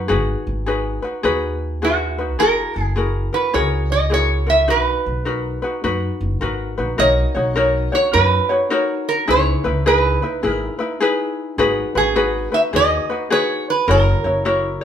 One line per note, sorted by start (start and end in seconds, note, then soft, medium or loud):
0.00 0.12 F#2 medium
0.08 0.34 G#1 medium
0.08 0.66 D#4 medium
0.08 0.67 F#4 medium
0.08 0.66 G#4 medium
0.08 0.67 B4 medium
0.47 0.97 G#1 medium
0.66 1.04 D#4 medium
0.66 1.03 F#4 medium
0.66 1.03 G#4 medium
0.66 1.01 B4 medium
1.02 1.23 D#4 soft
1.02 1.23 F#4 soft
1.02 1.24 B4 medium
1.23 2.39 D#2 medium
1.23 1.81 D#4 medium
1.23 1.82 F#4 medium
1.23 1.82 G#4 medium
1.23 1.82 B4 medium
1.82 2.19 D#4 medium
1.82 2.18 F#4 medium
1.82 2.42 F#4 medium
1.82 2.19 G#4 medium
1.82 2.17 B4 medium
2.18 2.39 D#4 soft
2.18 2.39 F#4 soft
2.18 2.39 B4 soft
2.39 2.63 F#1 medium
2.39 2.95 E4 medium
2.39 2.97 F#4 medium
2.39 2.94 G#4 medium
2.39 2.82 A#4 loud
2.39 2.97 A#4 medium
2.76 3.27 F#1 medium
2.82 2.93 G#4 loud
2.96 3.33 E4 medium
2.96 3.33 F#4 medium
2.96 3.32 G#4 medium
2.96 3.31 A#4 medium
3.33 3.52 E4 soft
3.33 3.53 F#4 soft
3.33 3.53 A#4 soft
3.33 3.55 B4 medium
3.54 4.69 C#2 medium
3.54 4.10 E4 medium
3.54 4.11 F#4 medium
3.54 4.09 G#4 medium
3.54 4.12 A#4 medium
3.54 3.91 C#5 medium
3.92 4.13 D#5 medium
4.10 4.47 E4 medium
4.10 4.46 F#4 medium
4.10 4.46 G#4 medium
4.10 4.45 A#4 medium
4.10 4.50 C#5 medium
4.46 4.67 E4 soft
4.46 4.67 F#4 soft
4.46 4.68 A#4 soft
4.46 4.70 E5 medium
4.68 4.93 B1 medium
4.68 5.25 D#4 medium
4.68 5.26 F#4 medium
4.68 5.27 B4 medium
4.68 6.38 B4 medium
5.06 5.57 B1 medium
5.25 5.63 D#4 medium
5.25 5.62 F#4 medium
5.25 5.63 A#4 medium
5.25 5.61 B4 medium
5.62 5.83 D#4 soft
5.62 5.83 F#4 soft
5.62 5.83 B4 medium
5.84 6.08 F#2 medium
5.84 6.41 D#4 medium
5.84 6.42 F#4 medium
5.84 6.42 B4 medium
6.21 6.39 F#1 medium
6.41 6.74 G#1 medium
6.41 6.78 D#4 medium
6.41 6.77 F#4 medium
6.41 6.78 A#4 medium
6.41 6.76 B4 medium
6.78 6.97 A#1 medium
6.78 6.97 D#4 soft
6.78 6.98 F#4 soft
6.78 6.99 B4 soft
6.98 7.23 B1 medium
6.98 7.35 D#4 medium
6.98 7.35 F#4 medium
6.98 7.35 A#4 medium
6.98 7.33 C#5 medium
6.98 7.94 D#5 loud
7.35 7.86 B1 medium
7.35 7.55 D#4 soft
7.35 7.55 F#4 soft
7.35 7.56 C#5 soft
7.56 7.93 D#4 medium
7.56 7.92 F#4 medium
7.56 7.93 A#4 medium
7.56 7.91 C#5 medium
7.92 8.13 D#4 soft
7.92 8.13 F#4 soft
7.92 8.13 C#5 soft
7.92 8.15 C#5 medium
8.13 8.38 F#2 medium
8.13 8.50 D#4 medium
8.13 8.49 F#4 medium
8.13 8.50 A#4 medium
8.13 9.04 B4 medium
8.13 8.48 C#5 medium
8.49 8.70 D#4 soft
8.49 8.70 F#4 soft
8.49 8.71 C#5 medium
8.70 9.27 D#4 medium
8.70 9.28 F#4 medium
8.70 9.27 A#4 medium
8.70 9.29 C#5 medium
9.09 9.30 A#4 medium
9.27 9.52 C#2 loud
9.27 9.65 D#4 medium
9.27 9.64 E4 medium
9.27 9.65 G#4 medium
9.27 9.63 B4 medium
9.27 9.87 C#5 medium
9.64 10.16 C#2 medium
9.64 9.85 D#4 soft
9.64 9.85 E4 soft
9.64 9.85 B4 medium
9.86 10.23 D#4 medium
9.86 10.22 E4 medium
9.86 10.23 G#4 medium
9.86 10.21 B4 medium
9.86 10.49 B4 medium
10.22 10.42 D#4 soft
10.22 10.43 E4 soft
10.22 10.43 B4 soft
10.43 10.67 G#1 medium
10.43 10.80 D#4 medium
10.43 10.79 E4 medium
10.43 10.80 G#4 medium
10.43 10.77 B4 medium
10.49 10.77 A#4 medium
10.79 11.00 D#4 soft
10.79 11.01 E4 medium
10.79 11.00 B4 medium
11.00 11.58 D#4 medium
11.00 11.59 E4 medium
11.00 11.58 G#4 medium
11.00 11.59 B4 loud
11.58 11.82 G#1 medium
11.58 11.95 D#4 medium
11.58 11.95 F#4 loud
11.58 11.95 G#4 medium
11.58 11.94 B4 medium
11.95 12.46 G#1 medium
11.95 12.15 D#4 soft
11.95 12.15 F#4 soft
11.95 12.55 G#4 medium
11.95 12.15 B4 medium
12.16 12.52 D#4 medium
12.16 12.51 F#4 medium
12.16 12.52 G#4 medium
12.16 12.51 B4 medium
12.52 12.72 D#4 soft
12.52 12.73 F#4 soft
12.52 12.73 B4 soft
12.52 12.60 E5 medium
12.73 12.97 D#2 medium
12.73 13.10 D#4 medium
12.73 13.10 F#4 medium
12.73 13.10 G#4 medium
12.73 13.08 B4 medium
12.73 13.32 D#5 loud
13.10 13.30 D#4 soft
13.10 13.30 F#4 soft
13.10 13.30 B4 medium
13.30 13.88 D#4 medium
13.30 13.89 F#4 medium
13.30 13.87 G#4 medium
13.30 13.89 B4 medium
13.30 13.69 C#5 medium
13.70 13.90 B4 medium
13.88 14.12 F#1 loud
13.88 14.25 E4 medium
13.88 14.24 F#4 medium
13.88 14.24 A#4 medium
13.88 14.79 A#4 medium
13.88 14.23 C#5 medium
14.24 14.75 F#1 medium
14.24 14.44 E4 soft
14.24 14.45 F#4 soft
14.24 14.45 C#5 soft
14.45 14.82 E4 medium
14.45 14.81 F#4 medium
14.45 14.81 A#4 medium
14.45 14.80 C#5 medium